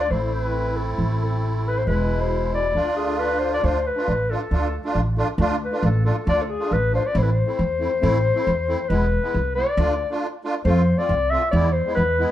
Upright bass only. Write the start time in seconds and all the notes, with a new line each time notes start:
0.11 A1
0.98 A1
1.87 E1
2.75 D2
3.64 D2
4.08 A1
4.51 D2
4.95 A1
5.38 D2
5.83 A1
6.27 D2
6.71 A1
7.15 A1
7.59 E2
8.03 A1
8.47 E2
8.90 E1
9.34 C2
9.77 D2
10.65 F2
11.09 C2
11.53 E2
11.97 E2